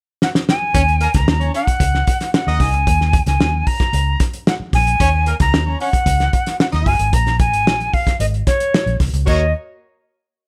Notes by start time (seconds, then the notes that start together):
0.22 F#5, snare
0.35 snare
0.49 G#5, snare
0.74 D#2 C#4 C#5, kick, closed hi-hat
0.88 closed hi-hat
1.00 A#3 A#4, closed hi-hat
1.14 C#2 A#5, kick, snare, closed hi-hat
1.27 D#2, snare
1.39 C#4 C#5, closed hi-hat
1.54 C#4 C#5 F#5, closed hi-hat
1.67 kick, closed hi-hat
1.80 C#2, kick, closed hi-hat
1.95 snare
2.07 kick, closed hi-hat
2.20 snare, closed hi-hat
2.34 F#5, snare
2.47 D#2 D#4 D#5, snare
2.60 C2 G#5, kick, snare, open hi-hat
2.73 C#2, closed hi-hat
2.87 D#2, kick, closed hi-hat
3.01 snare
3.13 kick, closed hi-hat
3.26 C#2 G#5, snare, closed hi-hat
3.40 D#2, snare
3.66 A#5, kick, open hi-hat
3.80 kick, snare, closed hi-hat
3.93 C#2, closed hi-hat
4.20 kick, snare, closed hi-hat
4.33 closed hi-hat
4.47 F#5, snare
4.60 muted fingered electric bass stroke
4.73 A#1 G#5, kick, snare, open hi-hat
4.87 closed hi-hat
5.00 D#2 C#4 C#5, kick, closed hi-hat
5.26 A#3 A#4, closed hi-hat
5.40 C#2 A#5, kick, snare, closed hi-hat
5.53 D#2, snare
5.67 C#4 C#5
5.80 C#4 C#5 F#5, open hi-hat
5.93 kick, closed hi-hat
6.06 C#2, kick, closed hi-hat
6.20 snare, closed hi-hat
6.33 kick, closed hi-hat
6.46 snare, closed hi-hat
6.60 F#5, snare
6.73 D#2 D#4 D#5, snare, closed hi-hat
6.86 F#1 G#5, kick, open hi-hat
6.99 G#1, closed hi-hat
7.13 A#1 A#5, kick, closed hi-hat
7.27 snare, closed hi-hat
7.39 G#5, kick, closed hi-hat
7.52 G#1, closed hi-hat
7.66 A#1, snare
7.80 closed hi-hat
7.93 F5, kick, open hi-hat
8.07 kick, snare, closed hi-hat
8.19 G#1 D#5, closed hi-hat
8.34 closed hi-hat
8.46 C#5, kick, snare, closed hi-hat
8.60 closed hi-hat
8.74 snare
8.86 A#1, closed hi-hat
9.00 C2, kick, snare, open hi-hat
9.13 C#2, closed hi-hat
9.26 D#2 A#3 F#4 C#5 D#5, kick, crash